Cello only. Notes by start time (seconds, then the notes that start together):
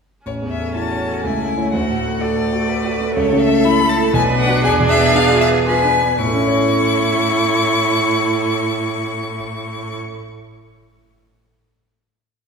0.76 F#4
1.25 E4
1.72 F#4
2.20 A4
2.69 B4
3.16 A4
4.15 B4
4.64 G#4
5.68 B4
6.21 A2